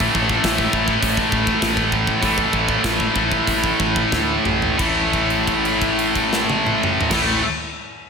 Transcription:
0.00 0.75 A2 medium
0.00 0.74 E3 medium
0.00 0.71 A3 loud
0.00 kick medium
0.15 0.37 A1 medium
0.15 kick medium
0.29 kick medium
0.44 0.66 A1 medium
0.44 kick medium
0.44 snare loud
0.44 open hi-hat medium
0.58 kick medium
0.72 0.95 A1 medium
0.72 2.21 A2 medium
0.72 2.23 E3 medium
0.72 2.25 A3 medium
0.72 kick medium
0.88 kick medium
1.02 1.24 A1 medium
1.02 kick medium
1.02 open hi-hat medium
1.17 kick medium
1.32 1.54 A1 medium
1.32 kick medium
1.47 kick medium
1.62 2.08 A1 medium
1.62 kick medium
1.62 snare loud
1.62 open hi-hat soft
1.77 kick medium
1.92 kick medium
2.07 kick medium
2.21 2.45 A1 medium
2.21 3.13 A2 medium
2.21 3.14 E3 loud
2.21 3.13 A3 loud
2.21 kick medium
2.21 open hi-hat soft
2.38 kick medium
2.53 2.76 A1 medium
2.53 kick medium
2.69 kick medium
2.84 3.07 A1 medium
2.84 kick medium
2.84 snare loud
2.84 open hi-hat medium
3.00 kick medium
3.14 3.39 A1 medium
3.14 4.76 A2 medium
3.14 4.78 E3 medium
3.14 4.76 A3 medium
3.14 kick medium
3.32 kick medium
3.47 3.71 A1 medium
3.47 kick medium
3.47 open hi-hat soft
3.64 kick medium
3.80 4.04 A1 medium
3.80 kick medium
3.96 kick medium
4.12 4.37 D2 medium
4.12 kick medium
4.12 snare medium
4.45 4.70 A1 medium
4.45 mid tom medium
4.62 floor tom medium
4.77 6.99 A1 medium
4.77 7.10 A2 medium
4.77 7.12 E3 medium
4.77 kick medium
4.77 crash medium
4.82 7.14 A3 medium
5.13 kick medium
5.13 crash soft
5.30 crash soft
5.47 kick medium
5.47 crash soft
5.65 crash soft
5.82 kick medium
5.82 crash soft
5.99 crash soft
6.15 kick medium
6.15 crash soft
6.33 snare medium
6.50 high tom medium
6.66 mid tom medium
6.83 mid tom medium
7.01 floor tom loud
7.10 7.39 A1 medium
7.10 7.41 A2 medium
7.10 7.42 E3 medium
7.10 7.43 A3 medium
7.10 kick loud
7.10 snare medium
7.10 crash loud

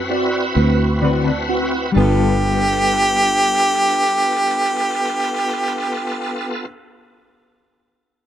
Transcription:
0.00 0.52 F#2 medium
0.00 1.91 C4 medium
0.00 1.91 E4 medium
0.00 1.92 F#4 medium
0.00 1.91 B4 medium
0.09 0.44 C4 medium
0.09 0.44 E4 medium
0.09 0.44 F#4 medium
0.09 0.44 D5 medium
0.55 1.92 D2 medium
0.55 0.90 C4 medium
0.55 0.84 C4 soft
0.55 0.90 E4 medium
0.55 0.90 F#4 medium
0.55 0.84 F#4 soft
0.55 0.83 B4 soft
0.55 0.90 B4 medium
1.01 1.30 D3 medium
1.01 1.36 C4 medium
1.01 1.30 C4 medium
1.01 1.36 E4 medium
1.01 1.36 F#4 medium
1.01 1.31 F#4 medium
1.01 1.31 B4 medium
1.01 1.37 D5 medium
1.01 1.23 B5 medium
1.24 1.46 A5 medium
1.48 1.84 C4 medium
1.48 1.84 E4 medium
1.48 1.84 F#4 medium
1.48 1.84 B4 medium
1.48 1.92 F#5 soft
1.92 6.67 G3 medium
1.92 6.66 B3 medium
1.92 6.65 D4 medium
1.92 6.66 F4 medium
1.92 6.65 A4 medium
1.96 6.67 G1 medium
1.96 6.72 B3 medium
1.96 6.68 G4 loud
1.96 6.67 A4 medium
1.96 6.69 B4 medium
2.01 6.75 F4 medium
2.01 6.79 A4 medium

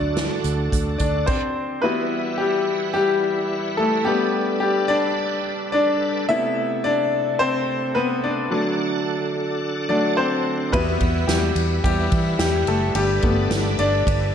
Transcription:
0.00 0.28 D2 medium
0.00 1.28 D3 medium
0.00 1.87 D3 medium
0.00 1.86 F#3 soft
0.00 1.86 A3 medium
0.00 0.99 D4 medium
0.00 1.28 D4 medium
0.00 1.27 F#4 medium
0.00 1.28 A4 medium
0.00 0.97 D5 medium
0.17 snare loud
0.17 closed hi-hat medium
0.44 0.68 D2 medium
0.44 closed hi-hat medium
0.72 0.95 D2 loud
0.72 kick medium
0.72 closed hi-hat medium
0.98 1.23 D2 medium
0.98 1.27 D4 medium
0.98 1.28 D5 medium
0.98 kick medium
0.98 closed hi-hat medium
1.26 1.80 C4 medium
1.26 1.85 C5 medium
1.26 kick loud
1.26 crash medium
1.82 4.05 E3 medium
1.82 2.38 G3 medium
1.82 4.04 G3 medium
1.82 2.36 B3 medium
1.82 4.02 E4 medium
1.82 4.05 E4 medium
1.82 4.02 F#4 medium
1.82 2.40 B4 medium
1.82 4.04 F#5 medium
2.38 2.92 G3 medium
2.38 2.92 G4 medium
2.94 3.75 G3 medium
2.94 3.74 G4 loud
3.77 4.05 A3 medium
3.77 4.04 A4 medium
4.05 4.58 G3 medium
4.05 6.26 G3 medium
4.05 6.25 A3 medium
4.05 6.25 B3 medium
4.05 6.27 D4 medium
4.05 4.59 G4 medium
4.05 6.27 A4 medium
4.05 6.26 B4 medium
4.60 4.88 G3 medium
4.60 4.87 G4 medium
4.88 5.69 D4 medium
4.88 5.71 D5 loud
5.72 6.25 D4 medium
5.72 6.24 D5 loud
6.29 8.49 C3 medium
6.29 6.66 C3 medium
6.29 8.49 A3 medium
6.29 6.66 A3 medium
6.29 6.67 B3 medium
6.29 6.81 E4 medium
6.29 6.80 E5 loud
6.84 7.37 D4 medium
6.84 7.42 D5 loud
7.39 7.92 C4 medium
7.39 7.97 C5 loud
7.95 8.22 B3 medium
7.95 8.24 B4 loud
8.24 8.50 D4 medium
8.24 9.31 D5 medium
8.51 10.72 D3 medium
8.51 8.88 F#3 medium
8.51 8.88 A3 medium
8.51 10.72 D4 medium
8.51 8.89 D4 medium
8.51 10.72 A4 medium
8.51 12.92 F#5 medium
9.89 10.15 F#3 medium
9.89 10.15 A3 soft
9.89 10.16 D4 medium
9.89 10.15 D5 medium
10.17 10.70 C4 medium
10.17 10.75 C5 medium
10.72 10.96 E2 loud
10.72 12.94 E3 medium
10.72 11.27 G3 medium
10.72 12.94 G3 medium
10.72 11.25 B3 medium
10.72 12.92 E4 medium
10.72 12.94 E4 medium
10.72 12.92 F#4 medium
10.72 11.30 B4 medium
10.72 kick loud
10.72 ride medium
11.00 11.24 E2 medium
11.00 kick medium
11.00 ride medium
11.27 11.51 E2 loud
11.27 11.81 G3 medium
11.27 11.82 G4 medium
11.27 snare loud
11.27 ride medium
11.27 tambourine medium
11.55 11.79 E2 loud
11.55 ride medium
11.84 12.07 E2 loud
11.84 12.37 G3 medium
11.84 12.38 G4 medium
11.84 kick loud
11.84 ride medium
12.12 12.35 E3 medium
12.12 kick loud
12.12 ride medium
12.39 12.62 E2 loud
12.39 12.66 G3 medium
12.39 12.66 G4 medium
12.39 snare loud
12.39 ride medium
12.39 tambourine loud
12.66 12.90 F#1 medium
12.66 12.94 A3 medium
12.66 12.97 A4 medium
12.66 ride medium
12.95 13.18 G1 loud
12.95 14.35 G3 medium
12.95 13.22 G3 medium
12.95 14.35 D4 medium
12.95 13.82 G4 loud
12.95 14.35 A4 medium
12.95 14.35 B4 medium
12.95 ride medium
13.22 13.46 G1 medium
13.22 14.03 G3 medium
13.22 14.03 A3 medium
13.22 14.03 B3 medium
13.22 kick medium
13.22 ride medium
13.51 13.74 G1 loud
13.51 snare loud
13.51 ride medium
13.51 tambourine medium
13.79 14.02 G1 loud
13.79 14.35 D4 medium
13.79 14.35 D5 loud
13.79 ride medium
14.07 14.30 G1 loud
14.07 kick loud
14.07 ride medium

